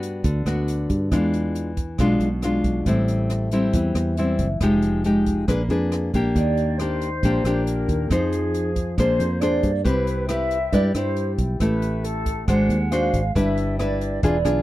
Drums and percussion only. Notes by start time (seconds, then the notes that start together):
0.03 closed hi-hat
0.24 kick, closed hi-hat
0.46 cross-stick, closed hi-hat
0.68 closed hi-hat
0.90 kick, closed hi-hat
1.12 kick, cross-stick, closed hi-hat
1.34 closed hi-hat
1.55 closed hi-hat
1.77 kick, closed hi-hat
1.98 kick, cross-stick, closed hi-hat
2.20 closed hi-hat
2.42 cross-stick, closed hi-hat
2.64 kick, closed hi-hat
2.86 kick, closed hi-hat
3.08 closed hi-hat
3.30 cross-stick, closed hi-hat
3.51 closed hi-hat
3.73 kick, closed hi-hat
3.95 cross-stick, closed hi-hat
4.17 closed hi-hat
4.39 kick, closed hi-hat
4.61 kick, cross-stick, closed hi-hat
4.82 closed hi-hat
5.04 closed hi-hat
5.26 kick, closed hi-hat
5.48 kick, cross-stick, closed hi-hat
5.70 closed hi-hat
5.92 cross-stick, closed hi-hat
6.14 kick, closed hi-hat
6.36 kick, closed hi-hat
6.57 closed hi-hat
6.79 cross-stick, closed hi-hat
7.01 closed hi-hat
7.23 kick, closed hi-hat
7.45 cross-stick, closed hi-hat
7.67 closed hi-hat
7.89 kick, closed hi-hat
8.11 kick, cross-stick, closed hi-hat
8.32 closed hi-hat
8.54 closed hi-hat
8.76 kick, closed hi-hat
8.98 kick, cross-stick, closed hi-hat
9.20 closed hi-hat
9.41 cross-stick, closed hi-hat
9.63 kick, closed hi-hat
9.85 kick, closed hi-hat
10.07 closed hi-hat
10.29 cross-stick, closed hi-hat
10.51 closed hi-hat
10.73 kick, closed hi-hat
10.95 cross-stick, closed hi-hat
11.16 closed hi-hat
11.38 kick, closed hi-hat
11.60 kick, cross-stick, closed hi-hat
11.82 closed hi-hat
12.04 closed hi-hat
12.26 kick, closed hi-hat
12.48 kick, cross-stick, closed hi-hat
12.70 closed hi-hat
12.92 cross-stick, closed hi-hat
13.14 kick, closed hi-hat
13.36 kick, closed hi-hat
13.58 closed hi-hat
13.79 cross-stick, closed hi-hat
14.01 closed hi-hat
14.23 kick, closed hi-hat
14.45 cross-stick, closed hi-hat